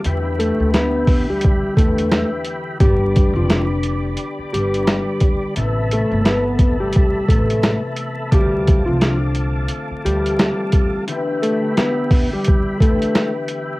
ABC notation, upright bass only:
X:1
M:4/4
L:1/16
Q:"Swing 16ths" 1/4=87
K:Gmix
V:1 name="Upright bass" clef=bass
E,,3 D,,4- D,, z2 E,,3 z3 | G,,,3 F,,,4- F,,, z2 G,,,3 z3 | A,,,3 G,,,4- G,,, z2 A,,,3 z3 | D,,3 C,,4- C,, z2 D,,3 z3 |
z16 |]